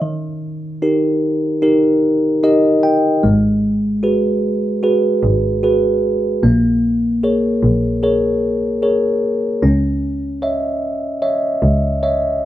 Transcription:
0, 0, Header, 1, 3, 480
1, 0, Start_track
1, 0, Key_signature, 5, "minor"
1, 0, Tempo, 800000
1, 15, Time_signature, 4, 2, 24, 8
1, 7470, End_track
2, 0, Start_track
2, 0, Title_t, "Tine electric piano"
2, 0, Program_c, 0, 4
2, 0, Control_c, 0, 64, 127
2, 10, Note_on_c, 0, 51, 55
2, 22, Control_c, 0, 64, 0
2, 127, Control_c, 0, 64, 127
2, 493, Note_on_c, 0, 63, 42
2, 495, Note_on_c, 0, 67, 39
2, 495, Note_on_c, 0, 70, 45
2, 960, Note_off_c, 0, 63, 0
2, 961, Note_off_c, 0, 67, 0
2, 961, Note_off_c, 0, 70, 0
2, 973, Note_on_c, 0, 63, 46
2, 974, Note_on_c, 0, 67, 39
2, 977, Note_on_c, 0, 70, 49
2, 1440, Note_off_c, 0, 63, 0
2, 1440, Note_off_c, 0, 67, 0
2, 1442, Note_off_c, 0, 70, 0
2, 1459, Note_on_c, 0, 63, 36
2, 1462, Note_on_c, 0, 67, 40
2, 1462, Note_on_c, 0, 75, 60
2, 1463, Note_on_c, 0, 70, 44
2, 1682, Note_off_c, 0, 75, 0
2, 1700, Note_on_c, 0, 79, 57
2, 1908, Note_off_c, 0, 51, 0
2, 1921, Note_off_c, 0, 79, 0
2, 1922, Note_off_c, 0, 63, 0
2, 1924, Note_off_c, 0, 67, 0
2, 1925, Note_off_c, 0, 70, 0
2, 1940, Note_on_c, 0, 56, 53
2, 1942, Control_c, 0, 64, 0
2, 2050, Control_c, 0, 64, 127
2, 2418, Note_on_c, 0, 66, 39
2, 2422, Note_on_c, 0, 68, 36
2, 2422, Note_on_c, 0, 71, 44
2, 2882, Note_off_c, 0, 66, 0
2, 2884, Note_off_c, 0, 68, 0
2, 2884, Note_off_c, 0, 71, 0
2, 2897, Note_on_c, 0, 66, 44
2, 2900, Note_on_c, 0, 68, 39
2, 2902, Note_on_c, 0, 71, 49
2, 3361, Note_off_c, 0, 66, 0
2, 3363, Note_off_c, 0, 68, 0
2, 3364, Note_off_c, 0, 71, 0
2, 3379, Note_on_c, 0, 66, 42
2, 3382, Note_on_c, 0, 68, 37
2, 3384, Note_on_c, 0, 71, 47
2, 3833, Note_off_c, 0, 56, 0
2, 3843, Note_off_c, 0, 66, 0
2, 3844, Note_off_c, 0, 68, 0
2, 3845, Note_off_c, 0, 71, 0
2, 3860, Note_on_c, 0, 58, 57
2, 3862, Control_c, 0, 64, 0
2, 3950, Control_c, 0, 64, 127
2, 4341, Note_on_c, 0, 68, 39
2, 4342, Note_on_c, 0, 70, 34
2, 4345, Note_on_c, 0, 73, 45
2, 4803, Note_off_c, 0, 68, 0
2, 4804, Note_off_c, 0, 70, 0
2, 4806, Note_off_c, 0, 73, 0
2, 4817, Note_on_c, 0, 68, 41
2, 4820, Note_on_c, 0, 70, 41
2, 4822, Note_on_c, 0, 73, 49
2, 5282, Note_off_c, 0, 68, 0
2, 5283, Note_off_c, 0, 70, 0
2, 5284, Note_off_c, 0, 73, 0
2, 5294, Note_on_c, 0, 68, 41
2, 5298, Note_on_c, 0, 70, 39
2, 5298, Note_on_c, 0, 73, 44
2, 5753, Note_off_c, 0, 58, 0
2, 5760, Note_off_c, 0, 68, 0
2, 5762, Note_off_c, 0, 70, 0
2, 5762, Note_off_c, 0, 73, 0
2, 5776, Note_on_c, 0, 61, 55
2, 5783, Control_c, 0, 64, 0
2, 5903, Control_c, 0, 64, 127
2, 6253, Note_on_c, 0, 73, 39
2, 6256, Note_on_c, 0, 75, 35
2, 6258, Note_on_c, 0, 76, 49
2, 6720, Note_off_c, 0, 73, 0
2, 6721, Note_off_c, 0, 75, 0
2, 6722, Note_off_c, 0, 76, 0
2, 6732, Note_on_c, 0, 73, 46
2, 6732, Note_on_c, 0, 75, 40
2, 6735, Note_on_c, 0, 76, 49
2, 7199, Note_off_c, 0, 73, 0
2, 7199, Note_off_c, 0, 75, 0
2, 7200, Note_off_c, 0, 76, 0
2, 7216, Note_on_c, 0, 73, 44
2, 7217, Note_on_c, 0, 75, 40
2, 7222, Note_on_c, 0, 76, 47
2, 7470, Note_off_c, 0, 61, 0
2, 7470, Note_off_c, 0, 73, 0
2, 7470, Note_off_c, 0, 75, 0
2, 7470, Note_off_c, 0, 76, 0
2, 7470, End_track
3, 0, Start_track
3, 0, Title_t, "Double bass"
3, 0, Program_c, 1, 43
3, 1942, Note_on_c, 1, 32, 77
3, 3114, Note_off_c, 1, 32, 0
3, 3137, Note_on_c, 1, 32, 75
3, 3832, Note_off_c, 1, 32, 0
3, 3857, Note_on_c, 1, 34, 86
3, 4552, Note_off_c, 1, 34, 0
3, 4575, Note_on_c, 1, 34, 81
3, 5751, Note_off_c, 1, 34, 0
3, 5774, Note_on_c, 1, 37, 87
3, 6950, Note_off_c, 1, 37, 0
3, 6971, Note_on_c, 1, 37, 88
3, 7470, Note_off_c, 1, 37, 0
3, 7470, End_track
0, 0, End_of_file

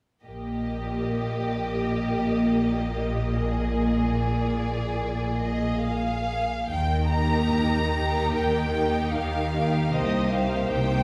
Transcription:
0, 0, Header, 1, 6, 480
1, 0, Start_track
1, 0, Key_signature, -3, "major"
1, 0, Tempo, 814111
1, 147, Time_signature, 4, 2, 24, 8
1, 1104, Tempo, 778210
1, 3024, Tempo, 824176
1, 3504, Tempo, 882353
1, 3984, Tempo, 826446
1, 4944, Tempo, 784314
1, 6587, End_track
2, 0, Start_track
2, 0, Title_t, "Violin section"
2, 0, Program_c, 0, 48
2, 144, Note_on_c, 0, 75, 36
2, 2519, Note_off_c, 0, 75, 0
2, 2546, Note_on_c, 0, 74, 42
2, 3258, Note_on_c, 0, 75, 52
2, 3260, Note_off_c, 0, 74, 0
2, 3488, Note_off_c, 0, 75, 0
2, 3502, Note_on_c, 0, 77, 57
2, 3980, Note_on_c, 0, 79, 55
2, 3984, Note_off_c, 0, 77, 0
2, 4217, Note_on_c, 0, 82, 61
2, 4218, Note_off_c, 0, 79, 0
2, 4927, Note_off_c, 0, 82, 0
2, 4952, Note_on_c, 0, 79, 53
2, 5434, Note_off_c, 0, 79, 0
2, 5434, Note_on_c, 0, 77, 52
2, 5917, Note_off_c, 0, 77, 0
2, 5917, Note_on_c, 0, 75, 57
2, 6151, Note_on_c, 0, 77, 52
2, 6152, Note_off_c, 0, 75, 0
2, 6386, Note_off_c, 0, 77, 0
2, 6386, Note_on_c, 0, 79, 54
2, 6587, Note_off_c, 0, 79, 0
2, 6587, End_track
3, 0, Start_track
3, 0, Title_t, "Violin section"
3, 0, Program_c, 1, 48
3, 150, Note_on_c, 1, 67, 38
3, 2039, Note_off_c, 1, 67, 0
3, 2065, Note_on_c, 1, 68, 49
3, 3852, Note_off_c, 1, 68, 0
3, 4227, Note_on_c, 1, 67, 33
3, 4228, Note_on_c, 1, 70, 37
3, 4701, Note_off_c, 1, 67, 0
3, 4702, Note_off_c, 1, 70, 0
3, 4714, Note_on_c, 1, 67, 38
3, 4716, Note_on_c, 1, 70, 41
3, 5180, Note_off_c, 1, 67, 0
3, 5181, Note_off_c, 1, 70, 0
3, 5197, Note_on_c, 1, 70, 29
3, 5200, Note_on_c, 1, 67, 34
3, 5665, Note_off_c, 1, 67, 0
3, 5665, Note_off_c, 1, 70, 0
3, 5672, Note_on_c, 1, 67, 39
3, 5672, Note_on_c, 1, 70, 36
3, 5909, Note_off_c, 1, 67, 0
3, 5909, Note_off_c, 1, 70, 0
3, 5919, Note_on_c, 1, 72, 37
3, 5920, Note_on_c, 1, 67, 39
3, 6148, Note_off_c, 1, 67, 0
3, 6148, Note_off_c, 1, 72, 0
3, 6158, Note_on_c, 1, 67, 33
3, 6159, Note_on_c, 1, 72, 39
3, 6587, Note_off_c, 1, 67, 0
3, 6587, Note_off_c, 1, 72, 0
3, 6587, End_track
4, 0, Start_track
4, 0, Title_t, "Viola section"
4, 0, Program_c, 2, 48
4, 152, Note_on_c, 2, 58, 37
4, 3853, Note_off_c, 2, 58, 0
4, 4224, Note_on_c, 2, 58, 36
4, 4226, Note_on_c, 2, 63, 35
4, 4700, Note_off_c, 2, 58, 0
4, 4701, Note_off_c, 2, 63, 0
4, 4708, Note_on_c, 2, 63, 41
4, 4712, Note_on_c, 2, 58, 35
4, 5174, Note_off_c, 2, 63, 0
4, 5175, Note_off_c, 2, 58, 0
4, 5182, Note_on_c, 2, 63, 39
4, 5183, Note_on_c, 2, 58, 36
4, 5661, Note_off_c, 2, 63, 0
4, 5662, Note_off_c, 2, 58, 0
4, 5672, Note_on_c, 2, 63, 35
4, 5673, Note_on_c, 2, 58, 36
4, 5906, Note_off_c, 2, 58, 0
4, 5909, Note_off_c, 2, 63, 0
4, 5914, Note_on_c, 2, 58, 40
4, 5916, Note_on_c, 2, 63, 36
4, 6144, Note_off_c, 2, 63, 0
4, 6145, Note_off_c, 2, 58, 0
4, 6151, Note_on_c, 2, 63, 37
4, 6153, Note_on_c, 2, 58, 38
4, 6587, Note_off_c, 2, 58, 0
4, 6587, Note_off_c, 2, 63, 0
4, 6587, End_track
5, 0, Start_track
5, 0, Title_t, "Cello section"
5, 0, Program_c, 3, 48
5, 150, Note_on_c, 3, 46, 39
5, 3852, Note_off_c, 3, 46, 0
5, 3987, Note_on_c, 3, 51, 46
5, 4412, Note_off_c, 3, 51, 0
5, 4475, Note_on_c, 3, 51, 42
5, 4893, Note_off_c, 3, 51, 0
5, 4948, Note_on_c, 3, 51, 44
5, 5374, Note_off_c, 3, 51, 0
5, 5433, Note_on_c, 3, 51, 43
5, 5860, Note_off_c, 3, 51, 0
5, 5913, Note_on_c, 3, 48, 49
5, 6329, Note_off_c, 3, 48, 0
5, 6389, Note_on_c, 3, 48, 46
5, 6587, Note_off_c, 3, 48, 0
5, 6587, End_track
6, 0, Start_track
6, 0, Title_t, "Double bass section"
6, 0, Program_c, 4, 48
6, 153, Note_on_c, 4, 34, 36
6, 3853, Note_off_c, 4, 34, 0
6, 3982, Note_on_c, 4, 39, 49
6, 4410, Note_off_c, 4, 39, 0
6, 4470, Note_on_c, 4, 39, 44
6, 4891, Note_off_c, 4, 39, 0
6, 4944, Note_on_c, 4, 39, 39
6, 5372, Note_off_c, 4, 39, 0
6, 5433, Note_on_c, 4, 39, 43
6, 5860, Note_off_c, 4, 39, 0
6, 5917, Note_on_c, 4, 36, 48
6, 6331, Note_off_c, 4, 36, 0
6, 6383, Note_on_c, 4, 36, 54
6, 6587, Note_off_c, 4, 36, 0
6, 6587, End_track
0, 0, End_of_file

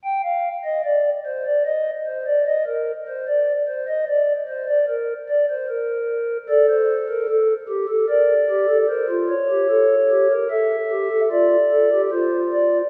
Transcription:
0, 0, Header, 1, 2, 480
1, 0, Start_track
1, 0, Tempo, 806452
1, 20, Time_signature, 4, 2, 24, 8
1, 7675, End_track
2, 0, Start_track
2, 0, Title_t, "Pipe organ"
2, 0, Program_c, 0, 19
2, 21, Note_on_c, 0, 79, 66
2, 125, Note_off_c, 0, 79, 0
2, 142, Note_on_c, 0, 77, 75
2, 292, Note_off_c, 0, 77, 0
2, 384, Note_on_c, 0, 75, 70
2, 487, Note_off_c, 0, 75, 0
2, 503, Note_on_c, 0, 74, 70
2, 653, Note_off_c, 0, 74, 0
2, 749, Note_on_c, 0, 72, 70
2, 851, Note_off_c, 0, 72, 0
2, 866, Note_on_c, 0, 74, 72
2, 970, Note_off_c, 0, 74, 0
2, 985, Note_on_c, 0, 75, 71
2, 1134, Note_off_c, 0, 75, 0
2, 1227, Note_on_c, 0, 72, 62
2, 1330, Note_off_c, 0, 72, 0
2, 1346, Note_on_c, 0, 74, 68
2, 1449, Note_off_c, 0, 74, 0
2, 1471, Note_on_c, 0, 75, 77
2, 1572, Note_off_c, 0, 75, 0
2, 1588, Note_on_c, 0, 70, 71
2, 1736, Note_off_c, 0, 70, 0
2, 1830, Note_on_c, 0, 72, 64
2, 1931, Note_off_c, 0, 72, 0
2, 1950, Note_on_c, 0, 74, 69
2, 2097, Note_off_c, 0, 74, 0
2, 2189, Note_on_c, 0, 72, 74
2, 2290, Note_off_c, 0, 72, 0
2, 2309, Note_on_c, 0, 75, 80
2, 2410, Note_off_c, 0, 75, 0
2, 2428, Note_on_c, 0, 74, 72
2, 2575, Note_off_c, 0, 74, 0
2, 2668, Note_on_c, 0, 72, 76
2, 2768, Note_off_c, 0, 72, 0
2, 2787, Note_on_c, 0, 74, 79
2, 2887, Note_off_c, 0, 74, 0
2, 2909, Note_on_c, 0, 70, 73
2, 3055, Note_off_c, 0, 70, 0
2, 3147, Note_on_c, 0, 74, 73
2, 3247, Note_off_c, 0, 74, 0
2, 3269, Note_on_c, 0, 72, 76
2, 3368, Note_off_c, 0, 72, 0
2, 3388, Note_on_c, 0, 70, 79
2, 3795, Note_off_c, 0, 70, 0
2, 3863, Note_on_c, 0, 69, 66
2, 3864, Note_on_c, 0, 74, 84
2, 3963, Note_off_c, 0, 74, 0
2, 3982, Note_on_c, 0, 72, 90
2, 4127, Note_off_c, 0, 72, 0
2, 4220, Note_on_c, 0, 70, 86
2, 4320, Note_off_c, 0, 70, 0
2, 4329, Note_off_c, 0, 69, 0
2, 4341, Note_on_c, 0, 69, 79
2, 4486, Note_off_c, 0, 69, 0
2, 4575, Note_on_c, 0, 67, 81
2, 4676, Note_off_c, 0, 67, 0
2, 4695, Note_on_c, 0, 69, 80
2, 4796, Note_off_c, 0, 69, 0
2, 4813, Note_on_c, 0, 70, 87
2, 4815, Note_on_c, 0, 74, 69
2, 4960, Note_off_c, 0, 70, 0
2, 5055, Note_on_c, 0, 67, 80
2, 5155, Note_off_c, 0, 67, 0
2, 5173, Note_on_c, 0, 69, 81
2, 5224, Note_off_c, 0, 74, 0
2, 5274, Note_off_c, 0, 69, 0
2, 5292, Note_on_c, 0, 72, 66
2, 5294, Note_on_c, 0, 70, 78
2, 5394, Note_off_c, 0, 70, 0
2, 5413, Note_on_c, 0, 65, 77
2, 5439, Note_off_c, 0, 72, 0
2, 5530, Note_on_c, 0, 73, 70
2, 5560, Note_off_c, 0, 65, 0
2, 5653, Note_on_c, 0, 67, 68
2, 5754, Note_off_c, 0, 67, 0
2, 5773, Note_on_c, 0, 69, 73
2, 5921, Note_off_c, 0, 69, 0
2, 6013, Note_on_c, 0, 67, 74
2, 6115, Note_off_c, 0, 67, 0
2, 6137, Note_on_c, 0, 70, 79
2, 6150, Note_off_c, 0, 73, 0
2, 6238, Note_off_c, 0, 70, 0
2, 6254, Note_on_c, 0, 76, 58
2, 6255, Note_on_c, 0, 69, 74
2, 6403, Note_off_c, 0, 69, 0
2, 6494, Note_on_c, 0, 67, 82
2, 6598, Note_off_c, 0, 67, 0
2, 6612, Note_on_c, 0, 69, 77
2, 6670, Note_off_c, 0, 76, 0
2, 6717, Note_off_c, 0, 69, 0
2, 6733, Note_on_c, 0, 65, 75
2, 6734, Note_on_c, 0, 74, 62
2, 6883, Note_off_c, 0, 65, 0
2, 6975, Note_on_c, 0, 69, 66
2, 7079, Note_off_c, 0, 69, 0
2, 7097, Note_on_c, 0, 67, 74
2, 7149, Note_off_c, 0, 74, 0
2, 7200, Note_off_c, 0, 67, 0
2, 7213, Note_on_c, 0, 72, 61
2, 7214, Note_on_c, 0, 65, 80
2, 7363, Note_off_c, 0, 72, 0
2, 7454, Note_on_c, 0, 74, 58
2, 7605, Note_off_c, 0, 74, 0
2, 7630, Note_off_c, 0, 65, 0
2, 7675, End_track
0, 0, End_of_file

